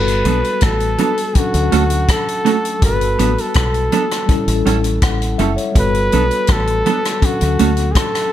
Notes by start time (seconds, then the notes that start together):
Already playing: G1 G3 B3 F#4 A4 B4
0.08 closed hi-hat
0.25 B1 F#3 B3 D4 A4, closed hi-hat
0.44 closed hi-hat
0.61 A1 A4, kick, cross-stick, closed hi-hat
0.80 closed hi-hat
0.98 F#3 B3 D4 A4, closed hi-hat
1.18 closed hi-hat
1.33 F#3 C#4, kick, closed hi-hat
1.38 D4 F#4 A4
1.54 D2, closed hi-hat
1.72 D2 A3 C#4 F#4 A4, closed hi-hat
1.90 muted clean electric guitar stroke, closed hi-hat
2.08 A4, kick, cross-stick, closed hi-hat
2.28 closed hi-hat
2.45 A3 C#4 F#4 A4, closed hi-hat
2.65 closed hi-hat
2.79 G1 G3 B3, kick, closed hi-hat
2.83 F#4 A4 B4
3.01 closed hi-hat
3.19 A1 F#3 B3 D4 A4, closed hi-hat
3.38 A4, closed hi-hat
3.54 B1, kick, cross-stick, closed hi-hat
3.74 closed hi-hat
3.92 F#3 B3 D4 A4, closed hi-hat
4.11 cross-stick, closed hi-hat
4.26 G3 C#4 E4, kick, closed hi-hat
4.32 A4
4.48 A1, closed hi-hat
4.66 A1 G3 C#4 E4 A4, closed hi-hat
4.84 muted clean electric guitar stroke, closed hi-hat
5.02 A1 F#5, kick, cross-stick, closed hi-hat
5.22 closed hi-hat
5.38 F#1 G3 C#4 E4 A4 E5, closed hi-hat
5.56 C#5, closed hi-hat
5.72 G3 B3, kick, closed hi-hat
5.76 G1 F#4 A4 B4
5.94 closed hi-hat
6.12 B1 F#3 B3 D4 A4, closed hi-hat
6.31 closed hi-hat
6.47 A1, kick, cross-stick, closed hi-hat
6.52 A4
6.67 closed hi-hat
6.86 F#3 B3 D4 A4, closed hi-hat
7.05 cross-stick, closed hi-hat
7.20 F#3 C#4 D4, kick, closed hi-hat
7.25 F#4 A4
7.41 D2, closed hi-hat
7.59 D2 A3 C#4 F#4 A4, closed hi-hat
7.77 muted clean electric guitar stroke, closed hi-hat
7.91 G#4, kick, closed hi-hat
7.96 A4, cross-stick
8.15 cross-stick, closed hi-hat